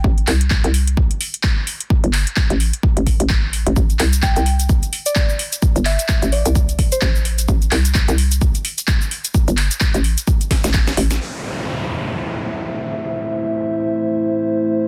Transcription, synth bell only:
X:1
M:4/4
L:1/16
Q:"Swing 16ths" 1/4=129
K:Am
V:1 name="Synth bell"
z16 | z16 | z4 g g z4 z d z4 | z2 e z3 d z4 c z4 |
z16 | z16 | z16 | z16 |]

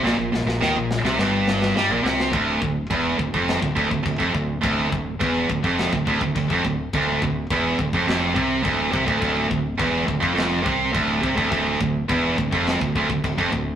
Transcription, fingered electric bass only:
X:1
M:4/4
L:1/16
Q:1/4=105
K:Dm
V:1 name="Fingered electric bass" clef=bass
B,,, B,,, B,,, B,,, _E,, B,,,2 C,, G,,,4 G,, B,,, C,,2 | D,,,2 D,,,2 E,,,2 D,,, F,,,2 D,,, D,,, D,,, D,,, F,,, D,,,2 | D,,,2 D,,,2 E,,,2 D,,, F,,,2 D,,, D,,, D,,, D,,, F,,, D,,,2 | D,,,2 D,,,2 E,,,2 D,,, F,,, F,,,2 C,,2 D,,,2 C,, D,,, |
D,,,2 D,,,2 E,,,2 D,,, F,,, F,,,2 C,,2 D,,,2 C,, D,,, | D,,,2 D,,,2 E,,,2 D,,, F,,,2 D,,, D,,, D,,, D,,, F,,, D,,,2 |]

